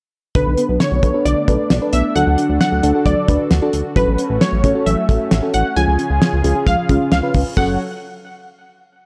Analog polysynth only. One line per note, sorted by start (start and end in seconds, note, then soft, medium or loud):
0.35 0.82 B4 medium
0.80 1.27 C#5 medium
1.25 1.95 D5 loud
1.93 2.16 E5 loud
2.15 2.59 F#5 loud
2.61 3.07 F#5 loud
3.06 3.69 D5 medium
3.96 4.42 B4 medium
4.41 4.88 C#5 medium
4.86 5.50 E5 loud
5.54 5.77 F#5 loud
5.76 6.63 G#5 loud
6.67 7.11 F5 loud
7.12 7.43 F5 medium
7.57 7.78 F#5 medium